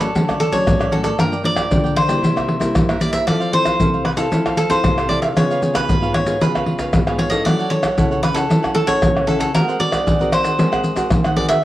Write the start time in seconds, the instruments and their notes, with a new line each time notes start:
Already playing: nylon-string guitar A2
0.00 nylon-string guitar F#3 A3 C#4, cavaquinho A4 C#5 D5, pandeiro, maracas
0.15 nylon-string guitar D3 F#3 A3 C#4, cavaquinho F#4 A4 C#5 D5, pandeiro, maracas, surdo
0.28 cavaquinho A4 C#5 D5, pandeiro, tamborim, maracas, surdo
0.40 cavaquinho A4, pandeiro, maracas
0.52 nylon-string guitar F#3 A3 C#4, cavaquinho A4 C#5 D5, pandeiro, maracas, surdo
0.66 nylon-string guitar A2, pandeiro, tamborim, maracas, surdo
0.79 cavaquinho A4 C#5 D5, pandeiro, tamborim, maracas
0.91 nylon-string guitar F#3 A3 C#4, cavaquinho F#4 A4 C#5 D5, pandeiro, surdo
1.03 cavaquinho A4 C#5 D5, pandeiro, maracas, surdo
1.18 nylon-string guitar G2 F3 A#3 D4, cavaquinho F4 A#4 D5 G5, pandeiro, tamborim, maracas, surdo
1.32 cavaquinho A#4 D5 G5, pandeiro, maracas
1.44 nylon-string guitar F3 A#3 D4, cavaquinho D5, muted cavaquinho stroke, pandeiro
1.56 cavaquinho A#4 D5 G5, pandeiro, tamborim, maracas, surdo
1.71 nylon-string guitar D3 F3 A#3 D4, cavaquinho F4 A#4 D5 G5, pandeiro, maracas, surdo
1.84 cavaquinho A#4 D5 G5, pandeiro, maracas
1.95 cavaquinho C5, muted cavaquinho stroke, pandeiro, tamborim
2.08 nylon-string guitar G3 A#3 E4, cavaquinho A#4 D5 G5, pandeiro, maracas
2.22 nylon-string guitar C3, cavaquinho E4 A#4 C5 E5, pandeiro, maracas, surdo
2.36 cavaquinho A#4 C5 E5, pandeiro, tamborim, maracas, surdo
2.49 pandeiro
2.60 nylon-string guitar G3 A#3 E4, cavaquinho A#4 C5 E5, pandeiro, maracas, surdo
2.75 nylon-string guitar G2, pandeiro, tamborim, maracas, surdo
2.89 cavaquinho A#4 C5 E5, pandeiro, tamborim, maracas
3.00 nylon-string guitar G3 A#3 E4, cavaquinho E4 A#4 C5 D5 E5, pandeiro, maracas
3.12 cavaquinho A#4 C5 E5, pandeiro, maracas, surdo
3.27 nylon-string guitar F3 C4 E4 A4, cavaquinho E4 A4 C5 D5 F5, pandeiro, tamborim, maracas, surdo
3.40 cavaquinho A4 C5 F5, pandeiro, maracas
3.52 nylon-string guitar C4 E4 A4, cavaquinho C5, muted cavaquinho stroke, pandeiro
3.65 cavaquinho A4 C5 F5, pandeiro, tamborim, maracas, surdo
3.79 nylon-string guitar C3 C4 E4 A4, cavaquinho E4 A4 C5 F5, pandeiro, maracas, surdo
3.94 cavaquinho A4 C5 F5, pandeiro, maracas
4.05 cavaquinho B4, muted cavaquinho stroke, pandeiro, tamborim
4.17 nylon-string guitar C4 E4 A4, cavaquinho A4 C5 F5, pandeiro, maracas
4.32 nylon-string guitar F3 C4 E4 A4, cavaquinho E4 A4 C5 F5, pandeiro, maracas, surdo
4.46 cavaquinho A4 C5 F5, pandeiro, tamborim, maracas, surdo
4.57 cavaquinho A4, pandeiro, maracas
4.70 nylon-string guitar C4 E4 A4, cavaquinho A4 C5 F5, pandeiro, maracas, surdo
4.84 nylon-string guitar C3, pandeiro, tamborim, maracas, surdo
4.98 cavaquinho A4 C5 F5, pandeiro, tamborim, maracas
5.09 nylon-string guitar C4 E4 A4, cavaquinho E4 A4 C5 D5 F5, pandeiro, surdo
5.22 cavaquinho A4 C5 E5 F5, pandeiro, maracas, surdo
5.37 nylon-string guitar C#3 B3 F4 G#4, cavaquinho F4 B4 C#5 F5, pandeiro, tamborim, maracas, surdo
5.51 cavaquinho B4 C#5 F5, pandeiro, maracas
5.62 nylon-string guitar B3 F4 G#4, muted cavaquinho stroke, pandeiro, maracas
5.74 cavaquinho B4 C#5 F5, pandeiro, tamborim, maracas, surdo
5.89 nylon-string guitar G#2, cavaquinho F4 B4 C#5 F5, pandeiro, maracas, surdo
6.02 nylon-string guitar B3 F4 G#4, cavaquinho B4 C#5 F5, pandeiro, maracas
6.14 cavaquinho C#5, muted cavaquinho stroke, pandeiro, tamborim
6.27 nylon-string guitar B3 F4 G#4, cavaquinho B4 C#5 F5, pandeiro, maracas
6.41 nylon-string guitar C#3 B3 F4 G#4, cavaquinho F4 B4 C#5 F5, pandeiro, maracas, surdo
6.55 cavaquinho B4 C#5 F5, pandeiro, tamborim, maracas, surdo
6.66 nylon-string guitar B3 F4 G#4, pandeiro
6.79 cavaquinho B4 C#5 F5, pandeiro, maracas, surdo
6.93 nylon-string guitar G#2, pandeiro, tamborim, maracas, surdo
7.07 nylon-string guitar B3 F4 G#4, cavaquinho B4 C#5 F5, pandeiro, tamborim, maracas
7.18 cavaquinho F4 B4 C#5 F5, pandeiro
7.30 nylon-string guitar C#4 E4 A4, cavaquinho B4 C#5 D#5 F5, pandeiro, maracas, surdo
7.45 nylon-string guitar F#3, cavaquinho E4 A4 C#5 D5 F#5, pandeiro, tamborim, maracas, surdo
7.59 cavaquinho A4 C#5 F#5, pandeiro, maracas
7.70 nylon-string guitar C#4 E4 A4, cavaquinho C#5, muted cavaquinho stroke, pandeiro
7.82 cavaquinho A4 C#5 F#5, pandeiro, tamborim, maracas, surdo
7.97 nylon-string guitar C#3 C#4 E4 A4, cavaquinho E4 A4 C#5 F#5, pandeiro, maracas, surdo
8.11 cavaquinho A4 C#5 F#5, pandeiro, maracas
8.23 cavaquinho B4, muted cavaquinho stroke, pandeiro, tamborim, maracas
8.34 nylon-string guitar C#4 E4 A4, cavaquinho A4 C#5 F#5, pandeiro, maracas
8.49 nylon-string guitar F#3 C#4 E4 A4, cavaquinho E4 A4 C#5 F#5, pandeiro, maracas, surdo
8.63 cavaquinho A4 C#5 F#5, pandeiro, tamborim, maracas, surdo
8.75 cavaquinho A4, pandeiro
8.86 nylon-string guitar C#4 E4 A4, cavaquinho A4 C#5 F#5, pandeiro, maracas, surdo
9.02 nylon-string guitar C#3, pandeiro, tamborim, maracas, surdo
9.14 cavaquinho A4 C#5 F#5, pandeiro, tamborim, maracas
9.26 nylon-string guitar C#4 E4 A4, cavaquinho E4 A4 C#5 F#5, pandeiro, maracas
9.39 cavaquinho A4 C#5 F#5, pandeiro, maracas, surdo
9.53 nylon-string guitar G#3 C4 F#4 A#4, cavaquinho F#4 G#4 A#4 C5 F#5, pandeiro, tamborim, maracas, surdo
9.68 cavaquinho G#4 C5 F#5, pandeiro, maracas
9.79 nylon-string guitar C4 F#4 A#4, cavaquinho D5, muted cavaquinho stroke, pandeiro
9.91 cavaquinho G#4 C5 F#5, pandeiro, tamborim, maracas, surdo
10.05 nylon-string guitar D#3, cavaquinho F#4 G#4 C5 F#5, pandeiro, maracas, surdo
10.19 nylon-string guitar C4 F#4 A#4, cavaquinho G#4 C5 F#5, pandeiro, maracas
10.31 cavaquinho C5, muted cavaquinho stroke, pandeiro, tamborim, maracas
10.43 cavaquinho G#4 C5 F#5, pandeiro, maracas
10.58 nylon-string guitar G#3 C4 F#4 A#4, cavaquinho F#4 G#4 C5 F#5, pandeiro, maracas, surdo
10.72 cavaquinho G#4 C5 F#5, pandeiro, tamborim, maracas, surdo
10.84 pandeiro, maracas
10.96 nylon-string guitar C4 F#4 A#4, cavaquinho G#4 C5 F#5, pandeiro, maracas, surdo
11.10 nylon-string guitar D#3, pandeiro, tamborim, maracas, surdo
11.24 cavaquinho G#4 C5 F#5, pandeiro, tamborim, maracas
11.36 nylon-string guitar C4 F#4 A#4, cavaquinho F#4 G#4 C5 D5 F#5, pandeiro, surdo
11.48 cavaquinho G#4 C5 E5 F#5, pandeiro, maracas, surdo